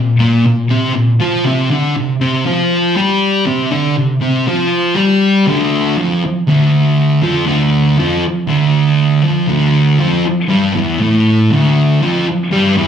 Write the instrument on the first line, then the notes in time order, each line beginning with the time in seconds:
distorted electric guitar
Already playing: A#2
0.19 A#2 A#3
0.46 A#2
0.69 C3 C4
0.94 A#2
1.20 F3 F4
1.44 C3 C4
1.70 D3 D4
1.97 C3
2.20 C3 C4
2.45 F3 F4
2.95 G3 G4
3.45 C3 C4
3.71 D3 D4
3.96 C3
4.20 C3 C4
4.47 F3 F4
4.95 G3 G4
5.46 D2 D3
5.98 F2 F3
6.48 D2 D3
7.22 F2 F3
7.46 D2 D3
7.98 F2 F3
8.47 D2 D3
9.22 F2 F3
9.47 D2 D3
9.99 F2 F3
10.48 G2 G3
10.73 E2 E3
11.00 A2 A3
11.51 D2 D3
12.01 F2 F3
12.51 G2 G3
12.76 E2 E3